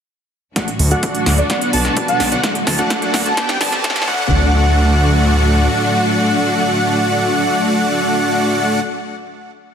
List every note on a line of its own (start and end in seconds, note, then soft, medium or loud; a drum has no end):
0.56 1.49 A2 medium
0.56 4.04 D3 medium
0.56 3.34 F#3 medium
0.56 0.68 A3 medium
0.56 2.42 D4 medium
0.56 0.68 D4 medium
0.56 3.34 F#4 medium
0.56 0.68 F#4 medium
0.56 0.68 D5 medium
0.56 0.68 F#5 medium
0.56 kick loud
0.56 snare soft
0.56 closed hi-hat loud
0.56 riser medium
0.68 closed hi-hat soft
0.79 0.95 D2 loud
0.79 open hi-hat loud
0.91 1.47 A3 medium
0.91 1.47 D4 medium
0.91 1.47 F#4 medium
0.91 1.47 D5 medium
0.91 1.47 F#5 medium
0.91 closed hi-hat soft
1.03 kick loud
1.03 closed hi-hat loud
1.15 closed hi-hat soft
1.26 1.41 D2 medium
1.26 snare medium
1.26 open hi-hat loud
1.38 1.55 D5 medium
1.38 closed hi-hat soft
1.50 2.43 B2 medium
1.50 1.70 B3 loud
1.50 1.70 D4 medium
1.50 1.70 F#4 medium
1.50 1.70 D5 medium
1.50 1.70 F#5 loud
1.50 kick loud
1.50 snare medium
1.50 closed hi-hat medium
1.61 closed hi-hat soft
1.73 1.88 B1 medium
1.73 2.29 B3 medium
1.73 2.29 D4 medium
1.73 2.29 F#4 medium
1.73 2.29 D5 medium
1.73 2.29 A5 medium
1.73 2.29 A5 loud
1.73 open hi-hat loud
1.85 snare medium
1.85 closed hi-hat soft
1.97 kick loud
1.97 closed hi-hat loud
2.08 2.20 F#5 medium
2.08 closed hi-hat soft
2.20 2.35 B1 medium
2.20 snare medium
2.20 open hi-hat loud
2.32 2.41 B3 medium
2.32 2.41 D4 medium
2.32 2.41 F#4 medium
2.32 2.41 D5 medium
2.32 2.41 F#5 loud
2.32 closed hi-hat soft
2.43 3.36 A2 medium
2.43 2.56 A3 medium
2.43 4.06 D4 medium
2.43 2.56 D4 medium
2.43 2.56 F#4 medium
2.43 2.56 F#5 medium
2.43 kick loud
2.43 snare medium
2.43 closed hi-hat medium
2.55 closed hi-hat soft
2.67 2.82 D2 loud
2.67 2.78 A5 medium
2.67 snare medium
2.67 open hi-hat loud
2.79 3.34 A3 medium
2.79 3.34 D4 medium
2.79 3.34 F#4 medium
2.79 3.34 D5 medium
2.79 3.34 F#5 medium
2.79 closed hi-hat soft
2.90 kick loud
2.90 snare medium
2.90 closed hi-hat loud
3.02 closed hi-hat soft
3.14 3.29 D2 medium
3.14 snare medium
3.14 open hi-hat loud
3.26 3.42 A5 loud
3.26 closed hi-hat soft
3.37 4.07 B2 medium
3.37 4.07 G3 medium
3.37 3.58 B3 loud
3.37 3.58 D4 loud
3.37 3.58 G4 medium
3.37 4.07 G4 medium
3.37 3.58 D5 medium
3.37 3.58 G5 loud
3.37 kick loud
3.37 snare loud
3.37 closed hi-hat medium
3.49 snare medium
3.49 closed hi-hat soft
3.61 3.76 G1 medium
3.61 4.08 B3 medium
3.61 4.06 D4 medium
3.61 4.08 G4 medium
3.61 4.06 D5 medium
3.61 4.08 A5 loud
3.61 4.07 A5 medium
3.61 snare loud
3.61 open hi-hat loud
3.72 snare medium
3.72 closed hi-hat soft
3.84 kick loud
3.84 snare loud
3.84 closed hi-hat loud
3.90 snare medium
3.96 snare medium
3.96 closed hi-hat soft
4.02 snare loud
4.08 5.68 D2 loud
4.08 8.80 A2 medium
4.08 8.80 D3 medium
4.08 8.80 F#3 medium
4.08 8.80 A3 medium
4.08 8.80 D4 medium
4.08 8.80 F#4 medium
4.08 8.80 D5 medium
4.08 8.80 F#5 loud
4.08 kick loud